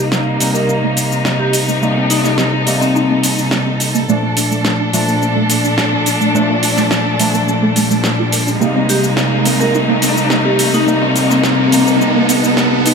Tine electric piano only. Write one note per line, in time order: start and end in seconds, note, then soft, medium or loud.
0.00 0.37 C3 medium
0.00 0.37 G3 medium
0.00 0.37 A#3 medium
0.00 0.38 D#4 medium
0.40 1.78 C3 medium
0.40 1.79 G3 medium
0.40 1.79 A#3 medium
0.40 1.79 D#4 medium
1.81 2.63 C3 medium
1.81 2.64 G3 medium
1.81 2.64 A#3 medium
1.81 2.64 D#4 medium
2.66 4.05 C3 medium
2.66 4.05 G3 medium
2.66 4.05 A#3 medium
2.66 4.06 D#4 medium
4.08 4.90 A#2 medium
4.08 4.90 F3 medium
4.08 4.90 A3 medium
4.08 4.91 D4 medium
4.92 6.31 A#2 medium
4.92 6.31 F3 medium
4.92 6.32 A3 medium
4.92 6.32 D4 medium
6.34 7.16 A#2 medium
6.34 7.16 F3 medium
6.34 7.17 A3 medium
6.34 7.17 D4 medium
7.19 8.58 A#2 medium
7.19 8.58 F3 medium
7.19 8.58 A3 medium
7.19 8.59 D4 medium
8.60 9.42 C3 medium
8.60 9.43 G3 medium
8.60 9.43 A#3 medium
8.60 9.43 D#4 medium
9.45 10.84 C3 medium
9.45 10.84 G3 medium
9.45 10.85 A#3 medium
9.45 10.85 D#4 medium
10.86 11.69 C3 medium
10.86 11.69 G3 medium
10.86 11.69 A#3 medium
10.86 11.70 D#4 medium
11.72 12.94 C3 medium
11.72 12.94 G3 medium
11.72 12.94 A#3 medium
11.72 12.94 D#4 medium